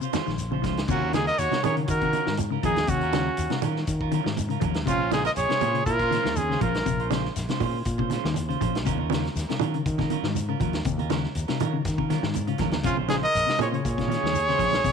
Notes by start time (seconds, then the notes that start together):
0.01 C3 C#4 F4 C5, closed hi-hat, shekere
0.13 D#3 G#3 C#4 F4 C5, snare, closed hi-hat, high conga, shekere
0.26 A#1 D#3, snare, shekere
0.38 closed hi-hat, shekere
0.51 C#3 C#4 F4 C5, high conga
0.62 C#2 F3 G#3 C#4, kick, snare, closed hi-hat, low conga, shekere
0.66 F4 C5
0.77 snare, closed hi-hat
0.88 D#2 C3 F#3 C#4 F4 F#4 A#4, muted clean electric guitar stroke, kick, crash, shekere
1.03 C#4 F4 A#4
1.13 C#3 C#4 D#4 F4 G#4, muted clean electric guitar stroke, snare, closed hi-hat, high conga, shekere
1.17 A#4
1.27 A#4 D#5, snare, closed hi-hat
1.38 D#2 F#4 C#5, closed hi-hat, shekere
1.51 C3 F4 A#4, snare, closed hi-hat, high conga
1.63 D#3 F#3 C#4 G#4 C#5, closed hi-hat, high conga, low conga, shekere
1.67 F4 A#4
1.76 C#3, closed hi-hat
1.87 D#3 F#4 A#4, kick, closed hi-hat, shekere
2.01 C3 C#4 F4 A#4, kick, closed hi-hat
2.13 D#3 C#4 F4 A#4, muted clean electric guitar stroke, closed hi-hat, high conga, shekere
2.26 G#2 D#3, snare
2.37 closed hi-hat, high conga, shekere
2.50 C#3 C#4 F4 A#4
2.63 D#2 F3 F#3 C#4 D#4 F4 G#4 A#4, kick, closed hi-hat, high conga, low conga, shekere
2.76 snare, closed hi-hat, high conga
2.87 D#2 C3 C#4 F#4, kick, closed hi-hat, shekere
3.01 C#4 F4 A#4, closed hi-hat
3.12 C#3 F#3 C#4 F4 A#4, snare, closed hi-hat, high conga, shekere
3.37 D#2, closed hi-hat, shekere
3.50 C3 F4 A#4, snare, closed hi-hat, high conga
3.62 D#3 F#3 C#4 F4 A#4, closed hi-hat, high conga, low conga, shekere
3.76 snare
3.87 D#3, kick, closed hi-hat, shekere
4.01 C#4 F4 A#4, kick
4.11 D#3 F#3 C#4 F4 A#4, closed hi-hat, high conga, shekere
4.24 G#2 D#3, snare
4.37 closed hi-hat, high conga, shekere
4.49 C#3 C#4 F4 A#4, closed hi-hat
4.60 D#2 F3 F#3 C#4 F4 A#4, kick, closed hi-hat, low conga, shekere
4.74 snare, closed hi-hat
4.86 A#1 C3 G#3 C#4 F4 C5, kick, closed hi-hat, shekere
5.01 C#4 F4 C5
5.11 C#3 G#3 C#4 D#4 F4 G#4 C5, snare, closed hi-hat, high conga, shekere
5.24 A#4 D#5, snare, closed hi-hat
5.36 A#1 G#4 C#5, closed hi-hat, shekere
5.49 C3 C#4 F4 C5, snare, closed hi-hat
5.61 A#2 G#3 C#4 F4 C5, closed hi-hat, high conga, low conga, shekere
5.74 C#3, closed hi-hat
5.86 A#2 F4 A#4, kick, closed hi-hat, shekere
5.99 C#4 F4 C5, kick, closed hi-hat
6.10 D#3 G#3 C#4 F4 C5, snare, closed hi-hat, high conga, shekere
6.23 D#2 D#3, snare
6.36 C#4 G#4, closed hi-hat, high conga, shekere
6.49 C#3 C#4 F4 C5, snare
6.61 A#1 F3 G#3 C#4 F4 A#4 C5, kick, closed hi-hat, high conga, low conga, shekere
6.74 snare, closed hi-hat
6.85 A#1 C3, kick, closed hi-hat, shekere
7.00 C#4 F4 C5, closed hi-hat
7.10 C#3 G#3 C#4 F4 C5, snare, closed hi-hat, high conga, shekere
7.25 snare
7.36 A#1, snare, closed hi-hat, shekere
7.48 C3 C#4 F4 C5, muted fingered electric bass stroke, snare, closed hi-hat, high conga
7.60 A#2 G#3 C#4 F4 C5, kick, open hi-hat, high conga, low conga, shekere
7.73 muted clean electric guitar stroke
7.85 A#2, kick, closed hi-hat, shekere
7.98 C3 C#4 C5, muted clean electric guitar stroke, kick, low conga
8.10 G#3 C#4 F4 C5, muted clean electric guitar stroke, snare, closed hi-hat, high conga, shekere
8.24 D#2 D#3, snare
8.34 closed hi-hat, high conga, shekere
8.49 C#3 C#4 F4 C5, closed hi-hat
8.61 A#1 F3 C#4 F4 C5, kick, closed hi-hat, low conga, shekere
8.75 snare, closed hi-hat
8.85 D#2 C3 F#3 C#4 F4 A#4, kick, closed hi-hat, shekere
8.98 C#4 F4 A#4, high conga
9.10 C#3 F#3 C#4 F4 A#4, snare, closed hi-hat, high conga, shekere
9.25 snare, closed hi-hat
9.35 D#2, snare, closed hi-hat, shekere
9.49 C3 C#4 F4 A#4, snare, closed hi-hat
9.59 D#3 F#3 C#4 F4 A#4, closed hi-hat, high conga, low conga, shekere
9.74 C#3, closed hi-hat
9.86 D#3, kick, closed hi-hat, shekere
9.98 C3 C#4 F4 A#4, kick, snare, closed hi-hat, low conga
10.10 D#3 F#3 C#4 F4 A#4, closed hi-hat, high conga, shekere
10.23 G#2 D#3, snare
10.35 closed hi-hat, high conga, shekere
10.49 C#3 C#4 F4 A#4
10.60 D#2 F3 F#3 C#4 F4 A#4, kick, closed hi-hat, low conga, shekere
10.73 snare, closed hi-hat
10.85 D#2 C3, kick, closed hi-hat, shekere
10.98 C#4 F4 A#4, closed hi-hat, high conga
11.10 C#3 F#3 C#4 A#4, muted clean electric guitar stroke, snare, closed hi-hat, high conga, shekere
11.23 snare
11.35 D#2, closed hi-hat, shekere
11.48 C3 C#4 F4 A#4, muted fingered electric bass stroke, snare, closed hi-hat
11.60 D#3 F#3 C#4 F4 A#4, closed hi-hat, high conga, low conga, shekere
11.73 C#3
11.85 D#3, kick, snare, closed hi-hat, shekere
11.98 C3 C#4 F4 A#4, kick
12.09 D#3 F#3 C#4 F4 A#4, snare, closed hi-hat, high conga, shekere
12.23 G#2 D#3, snare
12.34 closed hi-hat, high conga, shekere
12.47 C#3 C#4 F4, closed hi-hat
12.58 D#2 F3 F#3 C#4 F4 A#4, kick, snare, closed hi-hat, high conga, low conga, shekere
12.71 snare, closed hi-hat, high conga
12.83 A#1 C3 G#3 C#4 F4 C5, kick, closed hi-hat, shekere
12.97 C#4 F4 C5, high conga
13.08 C#3 G#3 C#4 D#4 F4 G#4, snare, closed hi-hat, high conga, shekere
13.12 C5
13.23 A#4 D#5, closed hi-hat
13.35 A#1, closed hi-hat, shekere
13.46 C3 C#4 F4, muted clean electric guitar stroke, snare, closed hi-hat
13.59 A#2 G#3 C#4 F4 G#4 C5 C#5, closed hi-hat, high conga, low conga, shekere
13.72 C#3 G#4 C#5, closed hi-hat
13.85 A#2, kick, closed hi-hat, shekere
13.97 C3 F4, muted clean electric guitar stroke, kick, snare, closed hi-hat
14.08 D#3 G#3 C#4 F4, muted clean electric guitar stroke, closed hi-hat, high conga, shekere
14.12 snare
14.23 D#2 D#3, snare
14.33 closed hi-hat, high conga, shekere
14.48 C#3 C#4 F4 C5, snare
14.58 A#1 F3 G#3 C#4 F4 C5, kick, closed hi-hat, low conga, shekere
14.72 snare, closed hi-hat, high conga
14.84 A#1 C3, kick, closed hi-hat, shekere